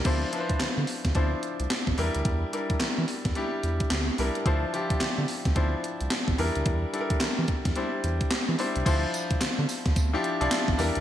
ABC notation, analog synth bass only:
X:1
M:4/4
L:1/16
Q:"Swing 16ths" 1/4=109
K:Dm
V:1 name="Analog synth bass" clef=bass
D,,2 z D, D, D, z D,, D,,2 z C,, z A,,, E,, D,, | E,,2 z E, E, E, z E,, z2 E,,2 D,,2 C,, z | D,,2 z D, D, D, z D,, D,,2 z C,, z A,,, E,, D,, | E,,2 z E, E, E, z E,, z2 E,,2 z E, z C,, |
D,,2 z D, D, D, z D,, D,,2 z C,, z A,,, E,, D,, |]